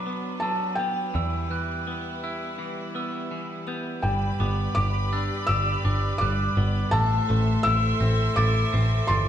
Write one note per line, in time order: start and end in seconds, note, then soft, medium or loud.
0.00 1.11 B1 medium
0.00 0.41 F#3 medium
0.00 1.13 F#3 medium
0.00 4.01 B3 medium
0.00 1.12 D4 medium
0.00 1.15 D4 medium
0.00 4.00 B4 medium
0.00 0.37 B5 medium
0.00 0.43 D6 medium
0.06 0.79 B3 medium
0.40 1.14 F#3 medium
0.40 0.79 A5 medium
0.40 1.14 E6 medium
0.75 1.87 B3 medium
0.75 3.62 G5 medium
1.14 4.00 E2 medium
1.14 1.49 E3 medium
1.14 4.01 G3 medium
1.14 4.01 E4 medium
1.14 1.51 E6 medium
1.50 2.57 E3 medium
1.50 2.23 F#6 medium
1.87 2.94 B3 medium
2.24 4.04 E4 medium
2.24 2.95 E6 medium
2.59 3.30 E3 medium
2.95 3.66 B3 medium
2.95 3.68 E6 medium
3.31 4.03 E3 medium
3.67 4.04 B3 medium
3.67 4.04 G6 medium
4.02 4.30 G1 medium
4.02 5.84 G3 medium
4.02 6.89 G4 medium
4.02 6.90 B4 medium
4.02 6.89 D5 medium
4.02 4.71 G5 medium
4.02 6.90 B5 medium
4.40 4.67 G1 medium
4.40 6.21 B3 medium
4.40 5.12 D6 medium
4.75 5.30 G1 medium
4.75 5.48 G4 medium
4.75 5.44 D6 medium
5.13 5.83 D4 medium
5.13 5.85 E6 medium
5.47 5.75 G1 medium
5.47 6.93 G4 medium
5.47 6.22 E6 medium
5.85 6.11 G1 medium
5.85 6.93 D4 medium
5.85 6.21 D6 medium
6.18 6.48 G1 medium
6.18 6.93 G3 medium
6.18 6.94 D6 medium
6.18 6.93 F#6 medium
6.57 6.83 G1 medium
6.57 6.93 B3 medium
6.91 7.19 A1 medium
6.91 8.73 A2 medium
6.91 9.29 A4 medium
6.91 9.29 C5 medium
6.91 9.29 E5 medium
6.91 7.60 A5 loud
6.91 9.29 C6 medium
6.91 7.63 E6 medium
7.29 7.56 A1 medium
7.29 9.09 A3 medium
7.63 7.92 A1 medium
7.63 8.35 E4 medium
7.63 8.38 E6 loud
7.63 8.37 E6 medium
8.00 8.27 A1 medium
8.00 8.71 C4 medium
8.36 8.64 A1 medium
8.36 9.29 E4 medium
8.36 9.05 D6 medium
8.36 9.08 A6 medium
8.73 9.00 A1 medium
8.73 9.29 C4 medium
9.07 9.29 G1 medium
9.07 9.29 E3 medium
9.07 9.29 C6 medium
9.07 9.29 A6 medium